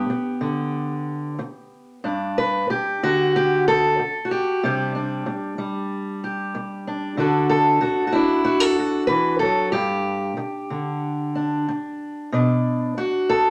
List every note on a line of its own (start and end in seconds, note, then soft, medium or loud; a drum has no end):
0.00 2.01 B3 soft
0.00 2.05 G4 medium
0.10 muted steel-string acoustic guitar stroke medium
0.41 1.38 D3 medium
1.39 muted steel-string acoustic guitar stroke medium
2.04 2.68 G2 medium
2.04 3.03 D4 soft
2.38 2.70 B4 medium
2.70 3.35 G4 medium
2.70 muted steel-string acoustic guitar stroke medium
3.03 3.99 D3 medium
3.03 3.99 F#4 medium
3.36 3.67 G4 medium
3.68 4.31 A4 medium
3.99 muted steel-string acoustic guitar stroke medium
4.25 4.63 F#4 medium
4.31 6.23 G4 medium
4.63 5.25 C3 medium
4.63 5.57 G3 soft
4.63 4.95 D4 soft
4.95 6.87 D4 soft
5.26 muted steel-string acoustic guitar stroke medium
5.58 7.18 G3 medium
6.24 7.15 G4 soft
6.55 muted steel-string acoustic guitar stroke medium
6.87 7.18 D4 soft
7.17 7.82 D3 medium
7.17 8.15 D4 soft
7.17 7.80 F#4 soft
7.17 7.48 A4 medium
7.50 8.12 A4 medium
7.81 8.06 F#4 medium
7.81 muted steel-string acoustic guitar stroke medium
8.07 8.43 F#4 medium
8.12 11.35 D4 medium
8.12 8.60 E4 medium
8.45 8.77 F#4 medium
8.60 9.07 A4 medium
8.79 9.71 F#4 soft
9.07 9.42 E3 medium
9.07 9.39 B4 medium
9.39 9.74 F#3 medium
9.39 9.72 A4 medium
9.72 10.36 G2 medium
9.72 12.33 G4 medium
10.37 muted steel-string acoustic guitar stroke medium
10.70 11.67 D3 medium
11.35 12.30 D4 soft
11.68 muted steel-string acoustic guitar stroke medium
12.32 12.97 B2 medium
12.32 13.50 D4 soft
12.97 13.50 F#4 medium
12.97 muted steel-string acoustic guitar stroke medium
13.29 13.50 A4 medium